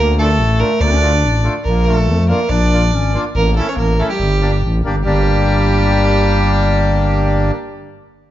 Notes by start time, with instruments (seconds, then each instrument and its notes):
Already playing: fm bass D2, clarinet A#3, violin A#4
0.19 accordion A3 D4 F4, clarinet A3, violin A4
0.38 fm bass A1
0.59 accordion A3 D4 F4, violin A#4
0.80 fm bass D2, clarinet D4, violin D5
1.00 accordion A3 D4 F4
1.24 fm bass A1
1.43 accordion A3 D4 F4
1.64 fm bass A#1, clarinet A#3, violin A#4
1.84 clarinet A3, accordion A#3 D4, violin A#4
1.88 accordion F4
1.95 violin A4
2.07 fm bass F2
2.29 accordion A#3 D4 F4, clarinet A#3, violin A#4
2.49 fm bass A#1, clarinet D4, violin D5
2.72 accordion A#3 D4 F4
2.92 fm bass G#1, clarinet C#4
3.13 accordion A#3 D4 F4
3.35 fm bass A1, clarinet A#3, violin A#4
3.57 accordion A3 C#4 E4, clarinet A3, violin A4
3.68 clarinet C#4, violin C#5
3.76 fm bass A1, clarinet A#3, violin A#4
3.98 accordion A3 C#4 E4, clarinet A3, violin A4
4.09 clarinet G3, violin G4
4.20 fm bass G1
4.41 accordion A#3 D4 G4
4.63 fm bass A1
4.84 fm bass G1, accordion A#3 D4 G4
5.04 fm bass G1, clarinet G3, accordion A#3 D4 G4, violin G4